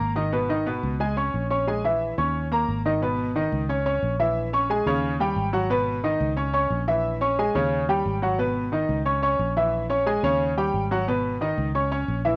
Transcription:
Already playing: A#3 A#4 A#5
0.00 G#1
0.16 D#3 D#4 D#5
0.32 B2 B3 B4
0.49 D#3 D#4 D#5
0.66 B2 B3 B4
0.83 C#2
1.00 G#3 G#4 G#5
1.17 C#4 C#5 C#6
1.34 A#1
1.50 C#4 C#5 C#6
1.67 G#3 G#4 G#5
1.84 E3 E4 E5
2.18 D#2 C#4 C#5 C#6
2.52 A#3 A#4 A#5
2.68 G#1
2.85 D#3 D#4 D#5
3.02 B2 B3 B4
3.35 D#3 D#4 D#5
3.52 C#2
3.69 C#4 C#5 C#6
3.86 C#4 C#5 C#6
4.02 A#1
4.19 E3 E4 E5
4.53 C#4 C#5 C#6
4.70 G#3 G#4 G#5
4.86 D#2 C#3 C#4 C#5
5.20 G3 G4 G5
5.36 G#1
5.53 F#3 F#4 F#5
5.70 B2 B3 B4
6.04 D#3 D#4 D#5
6.21 C#2
6.37 C#4 C#5 C#6
6.53 C#4 C#5 C#6
6.71 A#1
6.88 E3 E4 E5
7.21 C#4 C#5 C#6
7.39 G#3 G#4 G#5
7.55 D#2 C#3 C#4 C#5
7.89 G3 G4 G5
8.05 G#1
8.22 F#3 F#4 F#5
8.38 B2 B3 B4
8.72 D#3 D#4 D#5
8.89 C#2
9.05 C#4 C#5 C#6
9.22 C#4 C#5 C#6
9.39 A#1
9.57 E3 E4 E5
9.90 C#4 C#5 C#6
10.06 G#3 G#4 G#5
10.23 D#2 C#3 C#4 C#5
10.57 G3 G4 G5
10.74 G#1
10.91 F#3 F#4 F#5
11.08 B2 B3 B4
11.41 D#3 D#4 D#5
11.58 C#2
11.75 C#4 C#5 C#6
11.91 C#4 C#5 C#6
12.08 A#1
12.25 E3 E4 E5

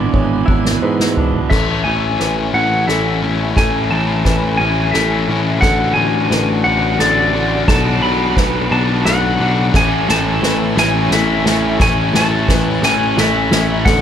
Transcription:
Already playing: E2 B2 E3 G#3 B3 D4 G#4 B4 E5 G#5
0.13 G#1 G#3 C#5, kick
0.46 G#1 D4 E4, kick
0.65 snare
0.82 G#2 B3 B4
1.00 snare
1.17 D4, floor tom
1.34 floor tom
1.50 A1 A2 E3 A3 C#4 E4 A4 E5 C#6, kick, snare, crash
1.84 A1 A2 E3 A3 C#4 E4 G#5, ride
2.20 A1 E3 B4, snare, ride
2.54 A1 A2 E3 A3 C#4 E4 F#5, ride
2.87 A1 A2 E3 A3 C#4 E4 A4 E5, snare, ride
3.22 A2 E3 A3 C#4 E4, ride
3.56 A1 A2 E3 A3 C#4 E4 A4 G#5, kick, snare, ride
3.90 A1 A2 E3 A3 C#4 E4 A5, ride
4.25 A1 E3 B4, kick, snare, ride
4.57 A1 A2 E3 A3 C#4 E4 G#5, ride
4.91 A1 A2 E3 A3 A4 E5, snare, ride
4.96 C#4 E4
5.28 A1 A2 E3 A3 C#4 E4, ride
5.61 A1 A2 D3 A3 D4 A4 F#5 C#6 D6, kick, snare, ride
5.65 F#4
5.94 A1 A2 G#5, ride
5.98 D3 A3 D4 F#4
6.29 A1 D3 B4, snare, ride
6.64 A1 A2 D3 A3 D4 F#4 F#5, ride
6.99 A1 A2 D3 A3 D4 F#4 A4 D5, snare, ride
7.33 A2 D3 A3 D4 F#4, ride
7.68 B1 B2 F#3 B3 D4 F#4 A4 A5 B5, kick, snare, ride
8.02 B1 B2 F#3 B3 D4 F#4 B5, ride
8.37 B1 F#3 B4, kick, snare, ride
8.70 B1 B2 F#3 B3 D4 F#4 A5, ride
9.05 B1 B2 F#3 B3 D4 F#4 A4 F#5, snare, ride
9.39 B1 B2 F#3 B3 D4 F#4, ride
9.72 A1 A2 E3 A3 C#4 E4 A4 E5 C#6 E6, kick, snare, crash
9.77 G#5
10.08 A1 A2 E3 A3 C#4 E4 A5, snare, ride
10.42 A1 E3 B4, snare, ride
10.76 A1 A2 E3 A3 C#4 E4 G#5, snare, ride
11.10 A1 A2 E3 A3 C#4 E4 A4 E5, snare, ride
11.46 A2 E3 A3 C#4 E4, snare, ride
11.79 A1 A2 E3 A3 C#4 E4 A4 G#5 F#6, kick, snare
12.13 A1 A2 E3 A3 C#4 E4 A5, snare
12.48 A1 E3 B4, kick, snare
12.82 A1 A2 E3 A3 C#4 E4 G#5, snare
13.17 A1 A2 E3 A3 C#4 E4 A4 E5, snare
13.51 A1 A2 E3 A3 C#4 E4, snare
13.84 A1 A2 D3 A3 D4 F#4 A4 F#5 D6, kick, snare

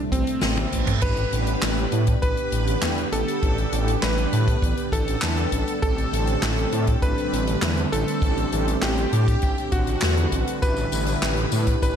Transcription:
Already playing: C3 G3 A3 C4 E4, reverse cymbal
0.12 A1 C4, kick, closed hi-hat
0.27 closed hi-hat
0.41 A1, snare, closed hi-hat, high tom
0.57 closed hi-hat, high tom
0.72 A1 A3 C4 B4, kick, closed hi-hat
0.87 closed hi-hat, mid tom
1.02 A1 D3 G3 B3 D4 G4 B4, kick, closed hi-hat, crash
1.17 closed hi-hat
1.32 A1, closed hi-hat
1.47 closed hi-hat
1.62 A1, snare, clap, closed hi-hat
1.78 closed hi-hat
1.92 A2, closed hi-hat
2.07 kick, closed hi-hat
2.22 A1 B4, kick, closed hi-hat
2.37 closed hi-hat
2.52 A1, closed hi-hat
2.67 closed hi-hat
2.82 E2 B3 D4 B4, snare, clap, closed hi-hat
2.98 closed hi-hat
3.12 A1 A4, closed hi-hat
3.28 closed hi-hat
3.42 A1 B3 D4 G4, kick, closed hi-hat
3.58 closed hi-hat
3.72 A1, closed hi-hat
3.88 closed hi-hat
4.02 A1 B4, snare, clap, closed hi-hat
4.18 closed hi-hat
4.33 A2, closed hi-hat
4.48 kick, closed hi-hat
4.62 A1, kick, closed hi-hat
4.77 closed hi-hat
4.92 A1 A4, kick, closed hi-hat
5.08 closed hi-hat
5.22 E2 B3 D4 B4, snare, clap, closed hi-hat
5.37 closed hi-hat
5.52 A1, kick, closed hi-hat
5.68 closed hi-hat
5.82 A1 G3 A3 C4 D4 G4 A4, kick, closed hi-hat
5.98 closed hi-hat
6.13 A1, closed hi-hat
6.27 closed hi-hat
6.42 A1, snare, clap, closed hi-hat
6.58 closed hi-hat
6.72 A2, closed hi-hat
6.87 kick, closed hi-hat
7.02 A1 B4, kick, closed hi-hat
7.18 closed hi-hat
7.32 A1, closed hi-hat
7.47 closed hi-hat
7.62 E2 C4 D4 B4, snare, clap, closed hi-hat
7.77 closed hi-hat
7.92 A1 A4, closed hi-hat
8.08 closed hi-hat
8.22 A1 C4 D4 G4, kick, closed hi-hat
8.38 closed hi-hat
8.53 A1, closed hi-hat
8.68 closed hi-hat
8.82 A1 G4, snare, clap, closed hi-hat
8.97 closed hi-hat
9.12 A2, closed hi-hat
9.28 kick, closed hi-hat
9.42 A1, kick, closed hi-hat
9.58 closed hi-hat
9.72 A1 F#4, kick, closed hi-hat
9.87 closed hi-hat
10.02 E2 C4 D4 B4, snare, clap, closed hi-hat
10.17 closed hi-hat
10.32 A1, kick, closed hi-hat
10.48 closed hi-hat
10.62 A1 G3 B3 D4 E4 G4 B4, kick, closed hi-hat, tambourine
10.77 closed hi-hat, tambourine
10.92 A1, closed hi-hat, tambourine
11.07 closed hi-hat, tambourine
11.22 A1, snare, clap, closed hi-hat, tambourine
11.37 closed hi-hat
11.52 A2, closed hi-hat, tambourine
11.67 kick, closed hi-hat, tambourine
11.82 A1 B4, kick, closed hi-hat, tambourine

